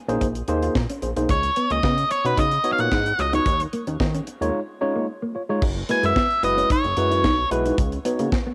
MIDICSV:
0, 0, Header, 1, 7, 480
1, 0, Start_track
1, 0, Tempo, 540541
1, 1150, Time_signature, 4, 2, 24, 8
1, 7586, End_track
2, 0, Start_track
2, 0, Title_t, "Lead electric guitar"
2, 0, Program_c, 0, 29
2, 1159, Note_on_c, 0, 73, 78
2, 1523, Note_on_c, 0, 75, 93
2, 1533, Note_off_c, 0, 73, 0
2, 1848, Note_off_c, 0, 75, 0
2, 1877, Note_on_c, 0, 73, 95
2, 2007, Note_off_c, 0, 73, 0
2, 2007, Note_on_c, 0, 71, 75
2, 2118, Note_off_c, 0, 71, 0
2, 2120, Note_on_c, 0, 75, 79
2, 2417, Note_off_c, 0, 75, 0
2, 2421, Note_on_c, 0, 77, 74
2, 2482, Note_off_c, 0, 77, 0
2, 2489, Note_on_c, 0, 78, 102
2, 2846, Note_off_c, 0, 78, 0
2, 2847, Note_on_c, 0, 75, 98
2, 2969, Note_off_c, 0, 75, 0
2, 2973, Note_on_c, 0, 73, 74
2, 3189, Note_off_c, 0, 73, 0
2, 5248, Note_on_c, 0, 80, 92
2, 5358, Note_off_c, 0, 80, 0
2, 5376, Note_on_c, 0, 76, 105
2, 5719, Note_off_c, 0, 76, 0
2, 5723, Note_on_c, 0, 75, 90
2, 5962, Note_off_c, 0, 75, 0
2, 5966, Note_on_c, 0, 73, 73
2, 6642, Note_off_c, 0, 73, 0
2, 7586, End_track
3, 0, Start_track
3, 0, Title_t, "Tine electric piano"
3, 0, Program_c, 1, 4
3, 75, Note_on_c, 1, 58, 85
3, 76, Note_on_c, 1, 63, 80
3, 79, Note_on_c, 1, 68, 82
3, 82, Note_on_c, 1, 72, 94
3, 234, Note_off_c, 1, 58, 0
3, 234, Note_off_c, 1, 63, 0
3, 236, Note_off_c, 1, 68, 0
3, 237, Note_off_c, 1, 72, 0
3, 428, Note_on_c, 1, 58, 96
3, 429, Note_on_c, 1, 63, 84
3, 432, Note_on_c, 1, 68, 84
3, 435, Note_on_c, 1, 72, 105
3, 646, Note_off_c, 1, 58, 0
3, 647, Note_off_c, 1, 63, 0
3, 649, Note_off_c, 1, 68, 0
3, 650, Note_off_c, 1, 72, 0
3, 908, Note_on_c, 1, 68, 101
3, 913, Note_on_c, 1, 72, 113
3, 966, Note_off_c, 1, 68, 0
3, 969, Note_off_c, 1, 72, 0
3, 1031, Note_on_c, 1, 58, 71
3, 1035, Note_on_c, 1, 63, 71
3, 1038, Note_on_c, 1, 68, 66
3, 1039, Note_on_c, 1, 72, 84
3, 1147, Note_off_c, 1, 58, 0
3, 1149, Note_off_c, 1, 63, 0
3, 1150, Note_off_c, 1, 68, 0
3, 1151, Note_off_c, 1, 72, 0
3, 1994, Note_on_c, 1, 59, 76
3, 1997, Note_on_c, 1, 63, 75
3, 1998, Note_on_c, 1, 66, 74
3, 2002, Note_on_c, 1, 73, 83
3, 2153, Note_off_c, 1, 59, 0
3, 2154, Note_off_c, 1, 63, 0
3, 2155, Note_off_c, 1, 66, 0
3, 2157, Note_off_c, 1, 73, 0
3, 2344, Note_on_c, 1, 59, 82
3, 2348, Note_on_c, 1, 63, 77
3, 2350, Note_on_c, 1, 66, 74
3, 2351, Note_on_c, 1, 73, 96
3, 2565, Note_off_c, 1, 59, 0
3, 2566, Note_off_c, 1, 63, 0
3, 2568, Note_off_c, 1, 66, 0
3, 2568, Note_off_c, 1, 73, 0
3, 2827, Note_on_c, 1, 66, 93
3, 2835, Note_on_c, 1, 73, 93
3, 2886, Note_off_c, 1, 66, 0
3, 2890, Note_off_c, 1, 73, 0
3, 2952, Note_on_c, 1, 59, 72
3, 2955, Note_on_c, 1, 63, 68
3, 2958, Note_on_c, 1, 66, 77
3, 2960, Note_on_c, 1, 73, 80
3, 3067, Note_off_c, 1, 59, 0
3, 3069, Note_off_c, 1, 63, 0
3, 3070, Note_off_c, 1, 66, 0
3, 3071, Note_off_c, 1, 73, 0
3, 3916, Note_on_c, 1, 56, 90
3, 3918, Note_on_c, 1, 63, 87
3, 3919, Note_on_c, 1, 65, 84
3, 3923, Note_on_c, 1, 73, 105
3, 4074, Note_off_c, 1, 56, 0
3, 4075, Note_off_c, 1, 63, 0
3, 4076, Note_off_c, 1, 65, 0
3, 4077, Note_off_c, 1, 73, 0
3, 4269, Note_on_c, 1, 56, 89
3, 4271, Note_on_c, 1, 63, 91
3, 4274, Note_on_c, 1, 65, 80
3, 4275, Note_on_c, 1, 73, 107
3, 4487, Note_off_c, 1, 56, 0
3, 4488, Note_off_c, 1, 63, 0
3, 4490, Note_off_c, 1, 65, 0
3, 4490, Note_off_c, 1, 73, 0
3, 4748, Note_on_c, 1, 65, 103
3, 4755, Note_on_c, 1, 73, 114
3, 4806, Note_off_c, 1, 65, 0
3, 4810, Note_off_c, 1, 73, 0
3, 4876, Note_on_c, 1, 56, 89
3, 4878, Note_on_c, 1, 63, 80
3, 4882, Note_on_c, 1, 65, 78
3, 4883, Note_on_c, 1, 73, 107
3, 4989, Note_off_c, 1, 56, 0
3, 4990, Note_off_c, 1, 63, 0
3, 4992, Note_off_c, 1, 65, 0
3, 4993, Note_off_c, 1, 73, 0
3, 5231, Note_on_c, 1, 56, 72
3, 5233, Note_on_c, 1, 64, 63
3, 5236, Note_on_c, 1, 66, 62
3, 5237, Note_on_c, 1, 71, 74
3, 5448, Note_off_c, 1, 56, 0
3, 5449, Note_off_c, 1, 64, 0
3, 5451, Note_off_c, 1, 66, 0
3, 5451, Note_off_c, 1, 71, 0
3, 5711, Note_on_c, 1, 56, 80
3, 5712, Note_on_c, 1, 64, 72
3, 5715, Note_on_c, 1, 66, 78
3, 5717, Note_on_c, 1, 71, 94
3, 5928, Note_off_c, 1, 56, 0
3, 5929, Note_off_c, 1, 64, 0
3, 5930, Note_off_c, 1, 66, 0
3, 5931, Note_off_c, 1, 71, 0
3, 6191, Note_on_c, 1, 56, 85
3, 6194, Note_on_c, 1, 64, 81
3, 6195, Note_on_c, 1, 66, 75
3, 6197, Note_on_c, 1, 71, 86
3, 6408, Note_off_c, 1, 56, 0
3, 6409, Note_off_c, 1, 64, 0
3, 6410, Note_off_c, 1, 66, 0
3, 6411, Note_off_c, 1, 71, 0
3, 6667, Note_on_c, 1, 56, 98
3, 6670, Note_on_c, 1, 64, 93
3, 6672, Note_on_c, 1, 66, 90
3, 6676, Note_on_c, 1, 71, 110
3, 6886, Note_off_c, 1, 56, 0
3, 6888, Note_off_c, 1, 64, 0
3, 6889, Note_off_c, 1, 66, 0
3, 6890, Note_off_c, 1, 71, 0
3, 7148, Note_on_c, 1, 59, 89
3, 7149, Note_on_c, 1, 63, 79
3, 7151, Note_on_c, 1, 66, 77
3, 7155, Note_on_c, 1, 73, 84
3, 7367, Note_off_c, 1, 59, 0
3, 7367, Note_off_c, 1, 63, 0
3, 7368, Note_off_c, 1, 66, 0
3, 7370, Note_off_c, 1, 73, 0
3, 7586, End_track
4, 0, Start_track
4, 0, Title_t, "Clean electric guitar"
4, 0, Program_c, 2, 27
4, 75, Note_on_c, 2, 61, 83
4, 159, Note_off_c, 2, 61, 0
4, 427, Note_on_c, 2, 63, 82
4, 522, Note_off_c, 2, 63, 0
4, 558, Note_on_c, 2, 65, 70
4, 641, Note_off_c, 2, 65, 0
4, 799, Note_on_c, 2, 61, 73
4, 882, Note_off_c, 2, 61, 0
4, 1040, Note_on_c, 2, 63, 66
4, 1122, Note_off_c, 2, 63, 0
4, 1392, Note_on_c, 2, 59, 74
4, 1485, Note_off_c, 2, 59, 0
4, 1518, Note_on_c, 2, 58, 64
4, 1601, Note_off_c, 2, 58, 0
4, 1634, Note_on_c, 2, 59, 87
4, 1726, Note_off_c, 2, 59, 0
4, 1997, Note_on_c, 2, 61, 70
4, 2081, Note_off_c, 2, 61, 0
4, 2110, Note_on_c, 2, 63, 78
4, 2204, Note_off_c, 2, 63, 0
4, 2476, Note_on_c, 2, 65, 74
4, 2560, Note_off_c, 2, 65, 0
4, 2587, Note_on_c, 2, 63, 87
4, 2682, Note_off_c, 2, 63, 0
4, 2958, Note_on_c, 2, 63, 76
4, 3041, Note_off_c, 2, 63, 0
4, 3313, Note_on_c, 2, 58, 81
4, 3406, Note_off_c, 2, 58, 0
4, 3439, Note_on_c, 2, 61, 77
4, 3522, Note_off_c, 2, 61, 0
4, 3680, Note_on_c, 2, 61, 76
4, 3762, Note_off_c, 2, 61, 0
4, 3921, Note_on_c, 2, 63, 76
4, 4003, Note_off_c, 2, 63, 0
4, 4272, Note_on_c, 2, 61, 74
4, 4365, Note_off_c, 2, 61, 0
4, 4400, Note_on_c, 2, 58, 78
4, 4483, Note_off_c, 2, 58, 0
4, 4637, Note_on_c, 2, 58, 70
4, 4721, Note_off_c, 2, 58, 0
4, 4877, Note_on_c, 2, 56, 71
4, 4960, Note_off_c, 2, 56, 0
4, 5230, Note_on_c, 2, 58, 67
4, 5324, Note_off_c, 2, 58, 0
4, 5355, Note_on_c, 2, 56, 72
4, 5439, Note_off_c, 2, 56, 0
4, 5466, Note_on_c, 2, 59, 82
4, 5561, Note_off_c, 2, 59, 0
4, 5837, Note_on_c, 2, 61, 76
4, 5920, Note_off_c, 2, 61, 0
4, 5951, Note_on_c, 2, 63, 81
4, 6044, Note_off_c, 2, 63, 0
4, 6315, Note_on_c, 2, 64, 73
4, 6399, Note_off_c, 2, 64, 0
4, 6430, Note_on_c, 2, 63, 81
4, 6524, Note_off_c, 2, 63, 0
4, 6800, Note_on_c, 2, 63, 69
4, 6882, Note_off_c, 2, 63, 0
4, 7151, Note_on_c, 2, 59, 83
4, 7245, Note_off_c, 2, 59, 0
4, 7277, Note_on_c, 2, 58, 79
4, 7360, Note_off_c, 2, 58, 0
4, 7519, Note_on_c, 2, 59, 75
4, 7586, Note_off_c, 2, 59, 0
4, 7586, End_track
5, 0, Start_track
5, 0, Title_t, "Analog synth bass"
5, 0, Program_c, 3, 38
5, 73, Note_on_c, 3, 34, 92
5, 162, Note_off_c, 3, 34, 0
5, 189, Note_on_c, 3, 34, 88
5, 376, Note_off_c, 3, 34, 0
5, 428, Note_on_c, 3, 39, 94
5, 616, Note_off_c, 3, 39, 0
5, 668, Note_on_c, 3, 46, 97
5, 768, Note_off_c, 3, 46, 0
5, 911, Note_on_c, 3, 34, 97
5, 1009, Note_off_c, 3, 34, 0
5, 1038, Note_on_c, 3, 35, 88
5, 1126, Note_off_c, 3, 35, 0
5, 1150, Note_on_c, 3, 37, 110
5, 1337, Note_off_c, 3, 37, 0
5, 1517, Note_on_c, 3, 37, 107
5, 1605, Note_off_c, 3, 37, 0
5, 1629, Note_on_c, 3, 49, 106
5, 1816, Note_off_c, 3, 49, 0
5, 1995, Note_on_c, 3, 47, 83
5, 2084, Note_off_c, 3, 47, 0
5, 2109, Note_on_c, 3, 49, 93
5, 2296, Note_off_c, 3, 49, 0
5, 2477, Note_on_c, 3, 46, 81
5, 2565, Note_off_c, 3, 46, 0
5, 2590, Note_on_c, 3, 44, 101
5, 2777, Note_off_c, 3, 44, 0
5, 2832, Note_on_c, 3, 37, 101
5, 3018, Note_off_c, 3, 37, 0
5, 3072, Note_on_c, 3, 39, 100
5, 3258, Note_off_c, 3, 39, 0
5, 3439, Note_on_c, 3, 39, 97
5, 3526, Note_off_c, 3, 39, 0
5, 3551, Note_on_c, 3, 51, 92
5, 3737, Note_off_c, 3, 51, 0
5, 3917, Note_on_c, 3, 39, 86
5, 4005, Note_off_c, 3, 39, 0
5, 4992, Note_on_c, 3, 30, 109
5, 5178, Note_off_c, 3, 30, 0
5, 5357, Note_on_c, 3, 42, 107
5, 5445, Note_off_c, 3, 42, 0
5, 5712, Note_on_c, 3, 30, 87
5, 5898, Note_off_c, 3, 30, 0
5, 6077, Note_on_c, 3, 30, 99
5, 6165, Note_off_c, 3, 30, 0
5, 6191, Note_on_c, 3, 42, 103
5, 6432, Note_on_c, 3, 35, 106
5, 6445, Note_off_c, 3, 42, 0
5, 6618, Note_off_c, 3, 35, 0
5, 6671, Note_on_c, 3, 35, 97
5, 6857, Note_off_c, 3, 35, 0
5, 6911, Note_on_c, 3, 37, 94
5, 7097, Note_off_c, 3, 37, 0
5, 7278, Note_on_c, 3, 49, 99
5, 7365, Note_off_c, 3, 49, 0
5, 7586, End_track
6, 0, Start_track
6, 0, Title_t, "Muted clean electric guitar strokes"
6, 187, Note_on_c, 9, 29, 42
6, 276, Note_off_c, 9, 29, 0
6, 914, Note_on_c, 9, 29, 45
6, 1003, Note_off_c, 9, 29, 0
6, 1279, Note_on_c, 9, 29, 46
6, 1368, Note_off_c, 9, 29, 0
6, 1871, Note_on_c, 9, 29, 45
6, 1960, Note_off_c, 9, 29, 0
6, 2237, Note_on_c, 9, 29, 43
6, 2326, Note_off_c, 9, 29, 0
6, 2717, Note_on_c, 9, 29, 48
6, 2806, Note_off_c, 9, 29, 0
6, 3199, Note_on_c, 9, 29, 49
6, 3287, Note_off_c, 9, 29, 0
6, 3794, Note_on_c, 9, 29, 39
6, 3883, Note_off_c, 9, 29, 0
6, 4033, Note_on_c, 9, 29, 45
6, 4122, Note_off_c, 9, 29, 0
6, 4753, Note_on_c, 9, 29, 42
6, 4842, Note_off_c, 9, 29, 0
6, 5119, Note_on_c, 9, 29, 50
6, 5208, Note_off_c, 9, 29, 0
6, 5709, Note_on_c, 9, 29, 45
6, 5797, Note_off_c, 9, 29, 0
6, 6076, Note_on_c, 9, 29, 44
6, 6165, Note_off_c, 9, 29, 0
6, 6559, Note_on_c, 9, 29, 49
6, 6647, Note_off_c, 9, 29, 0
6, 7040, Note_on_c, 9, 29, 47
6, 7129, Note_off_c, 9, 29, 0
6, 7586, End_track
7, 0, Start_track
7, 0, Title_t, "Drums"
7, 81, Note_on_c, 9, 42, 48
7, 170, Note_off_c, 9, 42, 0
7, 188, Note_on_c, 9, 36, 105
7, 190, Note_on_c, 9, 42, 109
7, 277, Note_off_c, 9, 36, 0
7, 279, Note_off_c, 9, 42, 0
7, 313, Note_on_c, 9, 42, 52
7, 402, Note_off_c, 9, 42, 0
7, 424, Note_on_c, 9, 42, 69
7, 512, Note_off_c, 9, 42, 0
7, 555, Note_on_c, 9, 42, 49
7, 644, Note_off_c, 9, 42, 0
7, 669, Note_on_c, 9, 36, 106
7, 670, Note_on_c, 9, 38, 111
7, 757, Note_off_c, 9, 36, 0
7, 759, Note_off_c, 9, 38, 0
7, 795, Note_on_c, 9, 42, 62
7, 884, Note_off_c, 9, 42, 0
7, 908, Note_on_c, 9, 42, 64
7, 997, Note_off_c, 9, 42, 0
7, 1035, Note_on_c, 9, 42, 59
7, 1124, Note_off_c, 9, 42, 0
7, 1147, Note_on_c, 9, 42, 99
7, 1148, Note_on_c, 9, 36, 106
7, 1236, Note_off_c, 9, 42, 0
7, 1237, Note_off_c, 9, 36, 0
7, 1273, Note_on_c, 9, 42, 52
7, 1362, Note_off_c, 9, 42, 0
7, 1388, Note_on_c, 9, 42, 75
7, 1477, Note_off_c, 9, 42, 0
7, 1513, Note_on_c, 9, 42, 48
7, 1602, Note_off_c, 9, 42, 0
7, 1628, Note_on_c, 9, 36, 124
7, 1632, Note_on_c, 9, 38, 108
7, 1717, Note_off_c, 9, 36, 0
7, 1721, Note_off_c, 9, 38, 0
7, 1757, Note_on_c, 9, 42, 49
7, 1846, Note_off_c, 9, 42, 0
7, 1870, Note_on_c, 9, 42, 65
7, 1959, Note_off_c, 9, 42, 0
7, 2002, Note_on_c, 9, 42, 53
7, 2091, Note_off_c, 9, 42, 0
7, 2109, Note_on_c, 9, 36, 103
7, 2111, Note_on_c, 9, 42, 114
7, 2198, Note_off_c, 9, 36, 0
7, 2200, Note_off_c, 9, 42, 0
7, 2233, Note_on_c, 9, 42, 52
7, 2322, Note_off_c, 9, 42, 0
7, 2344, Note_on_c, 9, 42, 73
7, 2433, Note_off_c, 9, 42, 0
7, 2473, Note_on_c, 9, 42, 43
7, 2562, Note_off_c, 9, 42, 0
7, 2590, Note_on_c, 9, 36, 105
7, 2590, Note_on_c, 9, 38, 110
7, 2679, Note_off_c, 9, 36, 0
7, 2679, Note_off_c, 9, 38, 0
7, 2717, Note_on_c, 9, 42, 58
7, 2806, Note_off_c, 9, 42, 0
7, 2831, Note_on_c, 9, 42, 62
7, 2920, Note_off_c, 9, 42, 0
7, 2957, Note_on_c, 9, 42, 54
7, 3046, Note_off_c, 9, 42, 0
7, 3070, Note_on_c, 9, 36, 114
7, 3070, Note_on_c, 9, 42, 99
7, 3159, Note_off_c, 9, 36, 0
7, 3159, Note_off_c, 9, 42, 0
7, 3196, Note_on_c, 9, 42, 53
7, 3285, Note_off_c, 9, 42, 0
7, 3311, Note_on_c, 9, 42, 73
7, 3400, Note_off_c, 9, 42, 0
7, 3437, Note_on_c, 9, 42, 50
7, 3525, Note_off_c, 9, 42, 0
7, 3551, Note_on_c, 9, 36, 111
7, 3556, Note_on_c, 9, 38, 109
7, 3639, Note_off_c, 9, 36, 0
7, 3645, Note_off_c, 9, 38, 0
7, 3679, Note_on_c, 9, 42, 56
7, 3768, Note_off_c, 9, 42, 0
7, 3791, Note_on_c, 9, 42, 63
7, 3880, Note_off_c, 9, 42, 0
7, 3924, Note_on_c, 9, 42, 53
7, 4013, Note_off_c, 9, 42, 0
7, 4989, Note_on_c, 9, 49, 106
7, 4991, Note_on_c, 9, 36, 127
7, 5078, Note_off_c, 9, 49, 0
7, 5080, Note_off_c, 9, 36, 0
7, 5231, Note_on_c, 9, 42, 78
7, 5319, Note_off_c, 9, 42, 0
7, 5358, Note_on_c, 9, 42, 47
7, 5447, Note_off_c, 9, 42, 0
7, 5471, Note_on_c, 9, 36, 127
7, 5477, Note_on_c, 9, 38, 108
7, 5560, Note_off_c, 9, 36, 0
7, 5565, Note_off_c, 9, 38, 0
7, 5600, Note_on_c, 9, 42, 37
7, 5689, Note_off_c, 9, 42, 0
7, 5714, Note_on_c, 9, 42, 70
7, 5803, Note_off_c, 9, 42, 0
7, 5845, Note_on_c, 9, 42, 52
7, 5934, Note_off_c, 9, 42, 0
7, 5952, Note_on_c, 9, 36, 110
7, 5953, Note_on_c, 9, 42, 116
7, 6040, Note_off_c, 9, 36, 0
7, 6042, Note_off_c, 9, 42, 0
7, 6078, Note_on_c, 9, 42, 35
7, 6166, Note_off_c, 9, 42, 0
7, 6187, Note_on_c, 9, 42, 72
7, 6276, Note_off_c, 9, 42, 0
7, 6318, Note_on_c, 9, 42, 45
7, 6407, Note_off_c, 9, 42, 0
7, 6431, Note_on_c, 9, 36, 106
7, 6432, Note_on_c, 9, 38, 119
7, 6520, Note_off_c, 9, 36, 0
7, 6520, Note_off_c, 9, 38, 0
7, 6672, Note_on_c, 9, 42, 75
7, 6761, Note_off_c, 9, 42, 0
7, 6799, Note_on_c, 9, 42, 57
7, 6888, Note_off_c, 9, 42, 0
7, 6910, Note_on_c, 9, 42, 100
7, 6911, Note_on_c, 9, 36, 124
7, 6999, Note_off_c, 9, 42, 0
7, 7000, Note_off_c, 9, 36, 0
7, 7035, Note_on_c, 9, 42, 37
7, 7124, Note_off_c, 9, 42, 0
7, 7150, Note_on_c, 9, 42, 83
7, 7239, Note_off_c, 9, 42, 0
7, 7274, Note_on_c, 9, 42, 54
7, 7363, Note_off_c, 9, 42, 0
7, 7390, Note_on_c, 9, 36, 122
7, 7394, Note_on_c, 9, 38, 112
7, 7479, Note_off_c, 9, 36, 0
7, 7483, Note_off_c, 9, 38, 0
7, 7586, End_track
0, 0, End_of_file